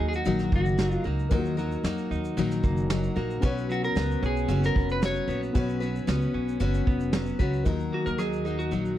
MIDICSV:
0, 0, Header, 1, 7, 480
1, 0, Start_track
1, 0, Key_signature, -6, "minor"
1, 0, Tempo, 529101
1, 1189, Time_signature, 4, 2, 24, 8
1, 8148, End_track
2, 0, Start_track
2, 0, Title_t, "Electric slide guitar"
2, 0, Program_c, 0, 29
2, 77, Note_on_c, 0, 68, 61
2, 126, Note_off_c, 0, 68, 0
2, 142, Note_on_c, 0, 66, 72
2, 493, Note_off_c, 0, 66, 0
2, 504, Note_on_c, 0, 66, 81
2, 822, Note_off_c, 0, 66, 0
2, 822, Note_on_c, 0, 65, 81
2, 934, Note_off_c, 0, 65, 0
2, 3372, Note_on_c, 0, 66, 76
2, 3483, Note_off_c, 0, 66, 0
2, 3488, Note_on_c, 0, 70, 90
2, 3849, Note_off_c, 0, 70, 0
2, 3863, Note_on_c, 0, 68, 81
2, 4181, Note_off_c, 0, 68, 0
2, 4225, Note_on_c, 0, 70, 102
2, 4453, Note_off_c, 0, 70, 0
2, 4461, Note_on_c, 0, 71, 92
2, 4567, Note_off_c, 0, 71, 0
2, 4586, Note_on_c, 0, 73, 90
2, 4903, Note_off_c, 0, 73, 0
2, 7205, Note_on_c, 0, 66, 78
2, 7312, Note_on_c, 0, 70, 92
2, 7322, Note_off_c, 0, 66, 0
2, 7430, Note_on_c, 0, 68, 84
2, 7436, Note_off_c, 0, 70, 0
2, 7767, Note_off_c, 0, 68, 0
2, 7791, Note_on_c, 0, 66, 70
2, 8140, Note_off_c, 0, 66, 0
2, 8148, End_track
3, 0, Start_track
3, 0, Title_t, "Steel-string acoustic guitar"
3, 0, Program_c, 1, 25
3, 0, Note_on_c, 1, 54, 58
3, 0, Note_on_c, 1, 63, 64
3, 0, Note_on_c, 1, 66, 68
3, 0, Note_on_c, 1, 70, 78
3, 228, Note_off_c, 1, 63, 0
3, 230, Note_on_c, 1, 51, 76
3, 231, Note_off_c, 1, 54, 0
3, 235, Note_on_c, 1, 54, 88
3, 236, Note_off_c, 1, 70, 0
3, 239, Note_on_c, 1, 63, 76
3, 243, Note_off_c, 1, 66, 0
3, 247, Note_on_c, 1, 66, 79
3, 247, Note_on_c, 1, 70, 86
3, 700, Note_off_c, 1, 54, 0
3, 704, Note_on_c, 1, 54, 59
3, 706, Note_off_c, 1, 63, 0
3, 710, Note_off_c, 1, 51, 0
3, 717, Note_on_c, 1, 63, 65
3, 718, Note_off_c, 1, 70, 0
3, 722, Note_off_c, 1, 66, 0
3, 726, Note_on_c, 1, 66, 66
3, 729, Note_on_c, 1, 70, 68
3, 933, Note_off_c, 1, 70, 0
3, 944, Note_on_c, 1, 70, 59
3, 945, Note_off_c, 1, 66, 0
3, 947, Note_off_c, 1, 54, 0
3, 953, Note_off_c, 1, 63, 0
3, 956, Note_on_c, 1, 66, 46
3, 970, Note_on_c, 1, 63, 43
3, 1181, Note_off_c, 1, 63, 0
3, 1185, Note_off_c, 1, 66, 0
3, 1185, Note_on_c, 1, 51, 80
3, 1186, Note_on_c, 1, 54, 101
3, 1187, Note_off_c, 1, 70, 0
3, 1192, Note_on_c, 1, 63, 91
3, 1196, Note_on_c, 1, 66, 88
3, 1200, Note_on_c, 1, 70, 101
3, 1413, Note_off_c, 1, 70, 0
3, 1424, Note_on_c, 1, 70, 62
3, 1427, Note_off_c, 1, 51, 0
3, 1428, Note_off_c, 1, 54, 0
3, 1428, Note_off_c, 1, 66, 0
3, 1430, Note_off_c, 1, 63, 0
3, 1439, Note_on_c, 1, 66, 50
3, 1448, Note_on_c, 1, 63, 44
3, 1667, Note_off_c, 1, 70, 0
3, 1670, Note_off_c, 1, 63, 0
3, 1672, Note_on_c, 1, 54, 70
3, 1674, Note_off_c, 1, 66, 0
3, 1681, Note_on_c, 1, 63, 75
3, 1688, Note_on_c, 1, 66, 89
3, 1695, Note_on_c, 1, 70, 77
3, 2153, Note_off_c, 1, 63, 0
3, 2154, Note_on_c, 1, 51, 86
3, 2158, Note_off_c, 1, 54, 0
3, 2158, Note_off_c, 1, 70, 0
3, 2161, Note_on_c, 1, 54, 90
3, 2163, Note_off_c, 1, 66, 0
3, 2163, Note_on_c, 1, 63, 95
3, 2166, Note_on_c, 1, 66, 84
3, 2169, Note_on_c, 1, 70, 98
3, 2628, Note_off_c, 1, 54, 0
3, 2631, Note_off_c, 1, 51, 0
3, 2631, Note_off_c, 1, 63, 0
3, 2631, Note_on_c, 1, 54, 63
3, 2639, Note_off_c, 1, 70, 0
3, 2642, Note_on_c, 1, 63, 73
3, 2647, Note_off_c, 1, 66, 0
3, 2651, Note_on_c, 1, 66, 67
3, 2658, Note_on_c, 1, 70, 69
3, 2853, Note_off_c, 1, 70, 0
3, 2864, Note_off_c, 1, 66, 0
3, 2864, Note_on_c, 1, 70, 62
3, 2870, Note_off_c, 1, 54, 0
3, 2875, Note_off_c, 1, 63, 0
3, 2875, Note_on_c, 1, 66, 53
3, 2887, Note_on_c, 1, 63, 46
3, 3104, Note_off_c, 1, 66, 0
3, 3104, Note_on_c, 1, 59, 84
3, 3106, Note_off_c, 1, 63, 0
3, 3106, Note_off_c, 1, 70, 0
3, 3109, Note_on_c, 1, 61, 91
3, 3115, Note_on_c, 1, 66, 93
3, 3121, Note_on_c, 1, 71, 93
3, 3575, Note_off_c, 1, 59, 0
3, 3584, Note_off_c, 1, 61, 0
3, 3586, Note_on_c, 1, 59, 70
3, 3594, Note_on_c, 1, 61, 67
3, 3595, Note_off_c, 1, 71, 0
3, 3600, Note_off_c, 1, 66, 0
3, 3604, Note_on_c, 1, 66, 68
3, 3611, Note_on_c, 1, 71, 70
3, 4060, Note_off_c, 1, 59, 0
3, 4068, Note_off_c, 1, 61, 0
3, 4071, Note_on_c, 1, 59, 76
3, 4079, Note_on_c, 1, 61, 81
3, 4080, Note_off_c, 1, 71, 0
3, 4082, Note_off_c, 1, 66, 0
3, 4085, Note_on_c, 1, 66, 89
3, 4091, Note_on_c, 1, 71, 88
3, 4543, Note_off_c, 1, 59, 0
3, 4548, Note_off_c, 1, 61, 0
3, 4554, Note_on_c, 1, 59, 59
3, 4559, Note_on_c, 1, 61, 64
3, 4560, Note_off_c, 1, 71, 0
3, 4565, Note_off_c, 1, 66, 0
3, 4569, Note_on_c, 1, 66, 72
3, 4576, Note_on_c, 1, 71, 63
3, 4777, Note_off_c, 1, 71, 0
3, 4787, Note_off_c, 1, 66, 0
3, 4788, Note_on_c, 1, 71, 52
3, 4791, Note_off_c, 1, 59, 0
3, 4794, Note_off_c, 1, 61, 0
3, 4798, Note_on_c, 1, 66, 45
3, 4808, Note_on_c, 1, 61, 43
3, 5028, Note_off_c, 1, 71, 0
3, 5032, Note_off_c, 1, 61, 0
3, 5033, Note_off_c, 1, 66, 0
3, 5034, Note_on_c, 1, 59, 87
3, 5043, Note_on_c, 1, 61, 89
3, 5047, Note_on_c, 1, 66, 87
3, 5053, Note_on_c, 1, 71, 95
3, 5253, Note_off_c, 1, 71, 0
3, 5264, Note_on_c, 1, 71, 58
3, 5268, Note_off_c, 1, 66, 0
3, 5271, Note_off_c, 1, 59, 0
3, 5276, Note_off_c, 1, 61, 0
3, 5279, Note_on_c, 1, 66, 51
3, 5289, Note_on_c, 1, 61, 39
3, 5506, Note_off_c, 1, 61, 0
3, 5506, Note_off_c, 1, 71, 0
3, 5509, Note_on_c, 1, 59, 78
3, 5514, Note_off_c, 1, 66, 0
3, 5517, Note_on_c, 1, 61, 77
3, 5526, Note_on_c, 1, 66, 78
3, 5532, Note_on_c, 1, 71, 83
3, 5975, Note_off_c, 1, 59, 0
3, 5981, Note_off_c, 1, 61, 0
3, 5986, Note_on_c, 1, 59, 80
3, 5990, Note_off_c, 1, 71, 0
3, 5991, Note_off_c, 1, 66, 0
3, 5991, Note_on_c, 1, 61, 81
3, 5995, Note_on_c, 1, 66, 88
3, 6001, Note_on_c, 1, 71, 91
3, 6458, Note_off_c, 1, 59, 0
3, 6468, Note_off_c, 1, 61, 0
3, 6469, Note_on_c, 1, 59, 65
3, 6476, Note_off_c, 1, 71, 0
3, 6479, Note_on_c, 1, 61, 66
3, 6482, Note_off_c, 1, 66, 0
3, 6486, Note_on_c, 1, 66, 66
3, 6495, Note_on_c, 1, 71, 75
3, 6693, Note_off_c, 1, 71, 0
3, 6704, Note_on_c, 1, 71, 53
3, 6709, Note_off_c, 1, 66, 0
3, 6710, Note_off_c, 1, 59, 0
3, 6715, Note_off_c, 1, 61, 0
3, 6720, Note_on_c, 1, 66, 61
3, 6731, Note_on_c, 1, 61, 47
3, 6943, Note_on_c, 1, 51, 72
3, 6947, Note_off_c, 1, 66, 0
3, 6948, Note_off_c, 1, 71, 0
3, 6949, Note_on_c, 1, 54, 73
3, 6951, Note_off_c, 1, 61, 0
3, 6954, Note_on_c, 1, 63, 81
3, 6957, Note_on_c, 1, 66, 82
3, 6963, Note_on_c, 1, 70, 83
3, 7419, Note_off_c, 1, 54, 0
3, 7423, Note_on_c, 1, 54, 57
3, 7432, Note_off_c, 1, 63, 0
3, 7435, Note_on_c, 1, 63, 59
3, 7437, Note_off_c, 1, 66, 0
3, 7438, Note_off_c, 1, 70, 0
3, 7441, Note_on_c, 1, 66, 62
3, 7451, Note_on_c, 1, 70, 63
3, 7653, Note_off_c, 1, 70, 0
3, 7664, Note_on_c, 1, 70, 51
3, 7665, Note_off_c, 1, 66, 0
3, 7668, Note_off_c, 1, 54, 0
3, 7674, Note_off_c, 1, 63, 0
3, 7676, Note_on_c, 1, 66, 44
3, 7689, Note_on_c, 1, 63, 41
3, 7900, Note_off_c, 1, 63, 0
3, 7903, Note_on_c, 1, 54, 60
3, 7909, Note_off_c, 1, 70, 0
3, 7910, Note_off_c, 1, 66, 0
3, 7911, Note_on_c, 1, 63, 55
3, 7920, Note_on_c, 1, 66, 57
3, 7927, Note_on_c, 1, 70, 54
3, 8127, Note_off_c, 1, 70, 0
3, 8141, Note_off_c, 1, 66, 0
3, 8148, Note_off_c, 1, 51, 0
3, 8148, Note_off_c, 1, 54, 0
3, 8148, Note_off_c, 1, 63, 0
3, 8148, End_track
4, 0, Start_track
4, 0, Title_t, "Upright piano"
4, 0, Program_c, 2, 0
4, 0, Control_c, 2, 64, 127
4, 0, Note_on_c, 2, 58, 76
4, 0, Note_on_c, 2, 63, 66
4, 0, Note_on_c, 2, 66, 64
4, 0, Note_on_c, 2, 75, 78
4, 1144, Note_off_c, 2, 58, 0
4, 1149, Note_off_c, 2, 63, 0
4, 1155, Note_off_c, 2, 66, 0
4, 1160, Note_off_c, 2, 75, 0
4, 1172, Note_on_c, 2, 58, 70
4, 1187, Note_on_c, 2, 63, 69
4, 1200, Note_on_c, 2, 65, 56
4, 1213, Note_on_c, 2, 70, 79
4, 1252, Note_off_c, 2, 65, 0
4, 1256, Note_on_c, 2, 66, 74
4, 3063, Note_off_c, 2, 58, 0
4, 3071, Note_off_c, 2, 63, 0
4, 3084, Note_off_c, 2, 70, 0
4, 3089, Note_on_c, 2, 59, 75
4, 3101, Note_on_c, 2, 61, 66
4, 3102, Note_off_c, 2, 66, 0
4, 3116, Note_on_c, 2, 66, 68
4, 3119, Control_c, 2, 64, 0
4, 3129, Note_on_c, 2, 73, 85
4, 3305, Control_c, 2, 64, 127
4, 4982, Note_off_c, 2, 59, 0
4, 4988, Note_off_c, 2, 61, 0
4, 4996, Note_off_c, 2, 66, 0
4, 5002, Note_off_c, 2, 73, 0
4, 5016, Note_on_c, 2, 59, 74
4, 5028, Note_on_c, 2, 61, 61
4, 5040, Note_on_c, 2, 66, 72
4, 5051, Note_on_c, 2, 73, 79
4, 6909, Note_off_c, 2, 59, 0
4, 6914, Note_off_c, 2, 61, 0
4, 6921, Note_off_c, 2, 66, 0
4, 6925, Note_on_c, 2, 58, 66
4, 6926, Note_off_c, 2, 73, 0
4, 6939, Note_on_c, 2, 63, 65
4, 6951, Note_on_c, 2, 65, 46
4, 6961, Control_c, 2, 64, 0
4, 6965, Note_on_c, 2, 75, 69
4, 7008, Note_on_c, 2, 66, 58
4, 7009, Note_off_c, 2, 65, 0
4, 7130, Control_c, 2, 64, 127
4, 8148, Note_off_c, 2, 58, 0
4, 8148, Note_off_c, 2, 63, 0
4, 8148, Note_off_c, 2, 66, 0
4, 8148, Note_off_c, 2, 75, 0
4, 8148, End_track
5, 0, Start_track
5, 0, Title_t, "Clean electric guitar"
5, 0, Program_c, 3, 27
5, 0, Note_on_c, 3, 54, 55
5, 0, Note_on_c, 3, 58, 58
5, 0, Note_on_c, 3, 63, 70
5, 0, Note_on_c, 3, 70, 70
5, 237, Note_off_c, 3, 54, 0
5, 240, Note_on_c, 3, 54, 70
5, 471, Note_off_c, 3, 58, 0
5, 482, Note_on_c, 3, 58, 60
5, 714, Note_off_c, 3, 54, 0
5, 718, Note_on_c, 3, 54, 63
5, 945, Note_off_c, 3, 58, 0
5, 956, Note_on_c, 3, 58, 55
5, 1194, Note_off_c, 3, 54, 0
5, 1197, Note_on_c, 3, 54, 77
5, 1432, Note_off_c, 3, 54, 0
5, 1436, Note_on_c, 3, 54, 61
5, 1667, Note_off_c, 3, 58, 0
5, 1678, Note_on_c, 3, 58, 61
5, 1904, Note_off_c, 3, 63, 0
5, 1915, Note_on_c, 3, 63, 64
5, 1968, Note_off_c, 3, 70, 0
5, 2151, Note_off_c, 3, 54, 0
5, 2154, Note_on_c, 3, 54, 71
5, 2383, Note_off_c, 3, 58, 0
5, 2394, Note_on_c, 3, 58, 63
5, 2634, Note_off_c, 3, 54, 0
5, 2638, Note_on_c, 3, 54, 60
5, 2862, Note_off_c, 3, 58, 0
5, 2873, Note_on_c, 3, 58, 62
5, 3101, Note_off_c, 3, 54, 0
5, 3105, Note_on_c, 3, 54, 76
5, 3159, Note_off_c, 3, 58, 0
5, 3159, Note_off_c, 3, 63, 0
5, 3347, Note_off_c, 3, 54, 0
5, 3351, Note_on_c, 3, 54, 54
5, 3598, Note_on_c, 3, 59, 63
5, 3833, Note_on_c, 3, 61, 66
5, 4066, Note_off_c, 3, 54, 0
5, 4070, Note_on_c, 3, 54, 66
5, 4300, Note_off_c, 3, 59, 0
5, 4311, Note_on_c, 3, 59, 61
5, 4549, Note_off_c, 3, 54, 0
5, 4553, Note_on_c, 3, 54, 59
5, 4784, Note_off_c, 3, 59, 0
5, 4795, Note_on_c, 3, 59, 59
5, 5033, Note_off_c, 3, 54, 0
5, 5036, Note_on_c, 3, 54, 69
5, 5273, Note_off_c, 3, 54, 0
5, 5276, Note_on_c, 3, 54, 54
5, 5504, Note_off_c, 3, 59, 0
5, 5515, Note_on_c, 3, 59, 65
5, 5743, Note_off_c, 3, 61, 0
5, 5754, Note_on_c, 3, 61, 61
5, 5993, Note_off_c, 3, 54, 0
5, 5997, Note_on_c, 3, 54, 62
5, 6221, Note_off_c, 3, 59, 0
5, 6232, Note_on_c, 3, 59, 63
5, 6470, Note_off_c, 3, 54, 0
5, 6474, Note_on_c, 3, 54, 59
5, 6698, Note_off_c, 3, 59, 0
5, 6709, Note_on_c, 3, 59, 60
5, 6943, Note_off_c, 3, 54, 0
5, 6947, Note_on_c, 3, 54, 64
5, 6999, Note_off_c, 3, 59, 0
5, 7002, Note_off_c, 3, 61, 0
5, 7189, Note_on_c, 3, 58, 53
5, 7424, Note_off_c, 3, 54, 0
5, 7428, Note_on_c, 3, 54, 57
5, 7670, Note_on_c, 3, 63, 59
5, 7908, Note_off_c, 3, 54, 0
5, 7912, Note_on_c, 3, 54, 55
5, 8143, Note_off_c, 3, 63, 0
5, 8148, Note_off_c, 3, 54, 0
5, 8148, Note_off_c, 3, 58, 0
5, 8148, End_track
6, 0, Start_track
6, 0, Title_t, "Upright bass"
6, 0, Program_c, 4, 32
6, 0, Note_on_c, 4, 39, 81
6, 189, Note_off_c, 4, 39, 0
6, 234, Note_on_c, 4, 34, 97
6, 429, Note_off_c, 4, 34, 0
6, 475, Note_on_c, 4, 30, 100
6, 866, Note_off_c, 4, 30, 0
6, 954, Note_on_c, 4, 37, 84
6, 1149, Note_off_c, 4, 37, 0
6, 1195, Note_on_c, 4, 39, 105
6, 1586, Note_off_c, 4, 39, 0
6, 1665, Note_on_c, 4, 41, 84
6, 1863, Note_off_c, 4, 41, 0
6, 1913, Note_on_c, 4, 39, 79
6, 2108, Note_off_c, 4, 39, 0
6, 2149, Note_on_c, 4, 34, 95
6, 2346, Note_off_c, 4, 34, 0
6, 2393, Note_on_c, 4, 30, 93
6, 2785, Note_off_c, 4, 30, 0
6, 2871, Note_on_c, 4, 34, 97
6, 3066, Note_off_c, 4, 34, 0
6, 3112, Note_on_c, 4, 35, 99
6, 3504, Note_off_c, 4, 35, 0
6, 3592, Note_on_c, 4, 37, 90
6, 3787, Note_off_c, 4, 37, 0
6, 3835, Note_on_c, 4, 35, 100
6, 4029, Note_off_c, 4, 35, 0
6, 4068, Note_on_c, 4, 30, 110
6, 4265, Note_off_c, 4, 30, 0
6, 4319, Note_on_c, 4, 29, 91
6, 4708, Note_off_c, 4, 29, 0
6, 4786, Note_on_c, 4, 34, 85
6, 4984, Note_off_c, 4, 34, 0
6, 5041, Note_on_c, 4, 35, 99
6, 5429, Note_off_c, 4, 35, 0
6, 5510, Note_on_c, 4, 37, 87
6, 5706, Note_off_c, 4, 37, 0
6, 5753, Note_on_c, 4, 35, 71
6, 5948, Note_off_c, 4, 35, 0
6, 5990, Note_on_c, 4, 30, 100
6, 6187, Note_off_c, 4, 30, 0
6, 6237, Note_on_c, 4, 29, 93
6, 6628, Note_off_c, 4, 29, 0
6, 6712, Note_on_c, 4, 37, 84
6, 6909, Note_off_c, 4, 37, 0
6, 6948, Note_on_c, 4, 39, 97
6, 7147, Note_off_c, 4, 39, 0
6, 7317, Note_on_c, 4, 39, 84
6, 7886, Note_off_c, 4, 39, 0
6, 7908, Note_on_c, 4, 34, 88
6, 8108, Note_off_c, 4, 34, 0
6, 8148, End_track
7, 0, Start_track
7, 0, Title_t, "Drums"
7, 118, Note_on_c, 9, 82, 56
7, 209, Note_off_c, 9, 82, 0
7, 226, Note_on_c, 9, 82, 61
7, 317, Note_off_c, 9, 82, 0
7, 354, Note_on_c, 9, 38, 32
7, 354, Note_on_c, 9, 82, 48
7, 444, Note_off_c, 9, 38, 0
7, 444, Note_off_c, 9, 82, 0
7, 473, Note_on_c, 9, 36, 93
7, 564, Note_off_c, 9, 36, 0
7, 594, Note_on_c, 9, 82, 55
7, 685, Note_off_c, 9, 82, 0
7, 713, Note_on_c, 9, 38, 106
7, 714, Note_on_c, 9, 82, 87
7, 804, Note_off_c, 9, 38, 0
7, 805, Note_off_c, 9, 82, 0
7, 828, Note_on_c, 9, 82, 54
7, 919, Note_off_c, 9, 82, 0
7, 1082, Note_on_c, 9, 82, 43
7, 1173, Note_off_c, 9, 82, 0
7, 1190, Note_on_c, 9, 82, 65
7, 1191, Note_on_c, 9, 36, 111
7, 1281, Note_off_c, 9, 82, 0
7, 1282, Note_off_c, 9, 36, 0
7, 1318, Note_on_c, 9, 82, 44
7, 1409, Note_off_c, 9, 82, 0
7, 1432, Note_on_c, 9, 82, 52
7, 1522, Note_off_c, 9, 82, 0
7, 1557, Note_on_c, 9, 82, 54
7, 1648, Note_off_c, 9, 82, 0
7, 1672, Note_on_c, 9, 38, 97
7, 1674, Note_on_c, 9, 82, 61
7, 1763, Note_off_c, 9, 38, 0
7, 1765, Note_off_c, 9, 82, 0
7, 1796, Note_on_c, 9, 82, 47
7, 1886, Note_off_c, 9, 82, 0
7, 1922, Note_on_c, 9, 82, 46
7, 2012, Note_off_c, 9, 82, 0
7, 2036, Note_on_c, 9, 82, 60
7, 2127, Note_off_c, 9, 82, 0
7, 2151, Note_on_c, 9, 82, 60
7, 2241, Note_off_c, 9, 82, 0
7, 2277, Note_on_c, 9, 38, 32
7, 2277, Note_on_c, 9, 82, 54
7, 2368, Note_off_c, 9, 38, 0
7, 2368, Note_off_c, 9, 82, 0
7, 2388, Note_on_c, 9, 82, 45
7, 2392, Note_on_c, 9, 36, 93
7, 2479, Note_off_c, 9, 82, 0
7, 2483, Note_off_c, 9, 36, 0
7, 2512, Note_on_c, 9, 82, 56
7, 2602, Note_off_c, 9, 82, 0
7, 2631, Note_on_c, 9, 38, 104
7, 2632, Note_on_c, 9, 82, 86
7, 2722, Note_off_c, 9, 38, 0
7, 2723, Note_off_c, 9, 82, 0
7, 2749, Note_on_c, 9, 82, 49
7, 2839, Note_off_c, 9, 82, 0
7, 2998, Note_on_c, 9, 82, 46
7, 3089, Note_off_c, 9, 82, 0
7, 3113, Note_on_c, 9, 36, 104
7, 3114, Note_on_c, 9, 82, 71
7, 3204, Note_off_c, 9, 36, 0
7, 3205, Note_off_c, 9, 82, 0
7, 3243, Note_on_c, 9, 82, 43
7, 3334, Note_off_c, 9, 82, 0
7, 3360, Note_on_c, 9, 82, 59
7, 3450, Note_off_c, 9, 82, 0
7, 3484, Note_on_c, 9, 82, 51
7, 3575, Note_off_c, 9, 82, 0
7, 3599, Note_on_c, 9, 38, 98
7, 3601, Note_on_c, 9, 82, 66
7, 3689, Note_off_c, 9, 38, 0
7, 3691, Note_off_c, 9, 82, 0
7, 3727, Note_on_c, 9, 82, 49
7, 3817, Note_off_c, 9, 82, 0
7, 3845, Note_on_c, 9, 82, 49
7, 3936, Note_off_c, 9, 82, 0
7, 3962, Note_on_c, 9, 82, 59
7, 4053, Note_off_c, 9, 82, 0
7, 4072, Note_on_c, 9, 82, 58
7, 4163, Note_off_c, 9, 82, 0
7, 4203, Note_on_c, 9, 38, 33
7, 4203, Note_on_c, 9, 82, 50
7, 4294, Note_off_c, 9, 38, 0
7, 4294, Note_off_c, 9, 82, 0
7, 4317, Note_on_c, 9, 36, 93
7, 4408, Note_off_c, 9, 36, 0
7, 4442, Note_on_c, 9, 82, 51
7, 4532, Note_off_c, 9, 82, 0
7, 4559, Note_on_c, 9, 38, 111
7, 4561, Note_on_c, 9, 82, 92
7, 4650, Note_off_c, 9, 38, 0
7, 4652, Note_off_c, 9, 82, 0
7, 4675, Note_on_c, 9, 82, 51
7, 4766, Note_off_c, 9, 82, 0
7, 4804, Note_on_c, 9, 82, 53
7, 4894, Note_off_c, 9, 82, 0
7, 4928, Note_on_c, 9, 82, 42
7, 5018, Note_off_c, 9, 82, 0
7, 5037, Note_on_c, 9, 36, 114
7, 5037, Note_on_c, 9, 82, 67
7, 5127, Note_off_c, 9, 36, 0
7, 5127, Note_off_c, 9, 82, 0
7, 5163, Note_on_c, 9, 82, 40
7, 5254, Note_off_c, 9, 82, 0
7, 5280, Note_on_c, 9, 82, 58
7, 5371, Note_off_c, 9, 82, 0
7, 5402, Note_on_c, 9, 82, 51
7, 5493, Note_off_c, 9, 82, 0
7, 5518, Note_on_c, 9, 38, 97
7, 5520, Note_on_c, 9, 82, 65
7, 5609, Note_off_c, 9, 38, 0
7, 5611, Note_off_c, 9, 82, 0
7, 5640, Note_on_c, 9, 82, 42
7, 5731, Note_off_c, 9, 82, 0
7, 5882, Note_on_c, 9, 82, 62
7, 5973, Note_off_c, 9, 82, 0
7, 5991, Note_on_c, 9, 82, 58
7, 6081, Note_off_c, 9, 82, 0
7, 6114, Note_on_c, 9, 38, 33
7, 6114, Note_on_c, 9, 82, 57
7, 6205, Note_off_c, 9, 38, 0
7, 6205, Note_off_c, 9, 82, 0
7, 6233, Note_on_c, 9, 36, 93
7, 6324, Note_off_c, 9, 36, 0
7, 6351, Note_on_c, 9, 82, 55
7, 6442, Note_off_c, 9, 82, 0
7, 6467, Note_on_c, 9, 38, 103
7, 6468, Note_on_c, 9, 82, 88
7, 6557, Note_off_c, 9, 38, 0
7, 6559, Note_off_c, 9, 82, 0
7, 6585, Note_on_c, 9, 82, 53
7, 6676, Note_off_c, 9, 82, 0
7, 6710, Note_on_c, 9, 36, 96
7, 6710, Note_on_c, 9, 82, 50
7, 6801, Note_off_c, 9, 36, 0
7, 6801, Note_off_c, 9, 82, 0
7, 6833, Note_on_c, 9, 82, 41
7, 6924, Note_off_c, 9, 82, 0
7, 6944, Note_on_c, 9, 82, 58
7, 6949, Note_on_c, 9, 36, 101
7, 7035, Note_off_c, 9, 82, 0
7, 7040, Note_off_c, 9, 36, 0
7, 7073, Note_on_c, 9, 82, 40
7, 7164, Note_off_c, 9, 82, 0
7, 7312, Note_on_c, 9, 82, 46
7, 7403, Note_off_c, 9, 82, 0
7, 7426, Note_on_c, 9, 37, 91
7, 7428, Note_on_c, 9, 82, 63
7, 7516, Note_off_c, 9, 37, 0
7, 7519, Note_off_c, 9, 82, 0
7, 7555, Note_on_c, 9, 82, 44
7, 7645, Note_off_c, 9, 82, 0
7, 7679, Note_on_c, 9, 82, 43
7, 7769, Note_off_c, 9, 82, 0
7, 7797, Note_on_c, 9, 82, 52
7, 7888, Note_off_c, 9, 82, 0
7, 7908, Note_on_c, 9, 82, 55
7, 7999, Note_off_c, 9, 82, 0
7, 8031, Note_on_c, 9, 82, 43
7, 8122, Note_off_c, 9, 82, 0
7, 8148, End_track
0, 0, End_of_file